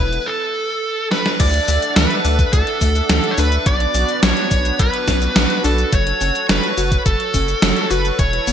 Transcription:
Already playing: B3 E4 A4 B4
0.00 E1 E4
0.13 closed hi-hat
0.26 A4
1.11 B4, snare
1.26 snare
1.40 D2 E3 D4 A4 D5 E5 F#5, kick, closed hi-hat, crash, cabasa
1.54 closed hi-hat
1.68 D2 A3, open hi-hat, cabasa
1.82 closed hi-hat, cabasa
1.96 D2 E3 B4, snare, closed hi-hat, cabasa
2.11 closed hi-hat
2.25 D2 D4, open hi-hat, cabasa
2.39 kick, closed hi-hat, cabasa
2.53 D2 E3 A4, kick, closed hi-hat, cabasa
2.67 closed hi-hat
2.81 D2 A3, kick, open hi-hat, cabasa
2.95 closed hi-hat, cabasa
3.10 D2 E3, snare, closed hi-hat, cabasa
3.24 closed hi-hat
3.31 C#5
3.38 D2 D4 B4, open hi-hat, cabasa
3.52 closed hi-hat, cabasa
3.66 B1 F#3 B3 D4 F#4 B4 D5, kick, closed hi-hat, cabasa
3.80 closed hi-hat
3.94 B1 C#4, open hi-hat, cabasa
4.09 closed hi-hat, cabasa
4.23 B1 F#3 C#5, snare, closed hi-hat, cabasa
4.37 closed hi-hat
4.51 B1 D4, kick, open hi-hat, cabasa
4.65 closed hi-hat, cabasa
4.79 B1 F#3 B4, kick, closed hi-hat, cabasa
4.94 closed hi-hat
5.08 B1 C#4, kick, snare, open hi-hat, cabasa
5.22 closed hi-hat, cabasa
5.36 B1 F#3, snare, closed hi-hat, cabasa
5.50 closed hi-hat
5.64 B1 D4 A4, open hi-hat, cabasa
5.78 closed hi-hat, cabasa
5.92 F#1 F#3 A4 C#5, kick, closed hi-hat, cabasa
6.07 closed hi-hat
6.21 F#1 C#4, open hi-hat, cabasa
6.35 closed hi-hat, cabasa
6.49 F#1 F#3 B4, snare, closed hi-hat, cabasa
6.63 closed hi-hat
6.78 F#1 F#4, open hi-hat, cabasa
6.92 kick, closed hi-hat, cabasa
7.06 F#1 F#3 A4, kick, closed hi-hat, cabasa
7.20 closed hi-hat
7.34 F#1 C#4, kick, open hi-hat, cabasa
7.48 closed hi-hat, cabasa
7.62 F#1 F#3, snare, closed hi-hat, cabasa
7.77 closed hi-hat
7.91 F#1 F#4 B4, open hi-hat, cabasa
8.05 closed hi-hat, cabasa
8.19 E1 E3 E4 B4 C#5, kick, closed hi-hat, cabasa
8.33 closed hi-hat
8.47 E1 B3, open hi-hat, cabasa

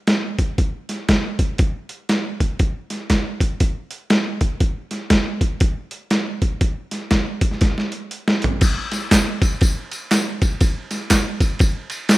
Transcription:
0.07 snare, closed hi-hat
0.38 kick, closed hi-hat
0.58 kick, closed hi-hat
0.89 snare, closed hi-hat
1.09 kick, snare, closed hi-hat
1.39 kick, closed hi-hat
1.58 kick, closed hi-hat
1.89 closed hi-hat
2.09 snare, closed hi-hat
2.40 kick, closed hi-hat
2.59 kick, closed hi-hat
2.90 snare, closed hi-hat
3.10 kick, snare, closed hi-hat
3.40 kick, closed hi-hat
3.60 kick, closed hi-hat
3.91 closed hi-hat
4.10 snare, closed hi-hat
4.41 kick, closed hi-hat
4.60 kick, closed hi-hat
4.91 snare, closed hi-hat
5.10 kick, snare, closed hi-hat
5.41 kick, closed hi-hat
5.60 kick, closed hi-hat
5.91 closed hi-hat
6.10 snare, closed hi-hat
6.42 kick, closed hi-hat
6.61 kick, closed hi-hat
6.91 snare, closed hi-hat
7.11 kick, snare, closed hi-hat
7.41 kick, closed hi-hat
7.51 snare
7.61 kick, snare, closed hi-hat
7.78 snare
7.92 closed hi-hat
8.11 closed hi-hat
8.28 snare
8.42 closed hi-hat, floor tom
8.61 kick, crash, ride, tambourine
8.91 snare, ride, tambourine
9.11 kick, snare, clap, ride, tambourine
9.42 kick, ride, tambourine
9.61 kick, ride, tambourine
9.92 ride, tambourine
10.11 snare, clap, ride, tambourine
10.42 kick, ride, tambourine
10.61 kick, ride, tambourine
10.91 snare, ride, tambourine
11.10 kick, snare, clap, ride, tambourine
11.40 kick, ride, tambourine
11.59 kick, ride, tambourine
11.90 ride, tambourine
12.09 snare, clap, ride, tambourine

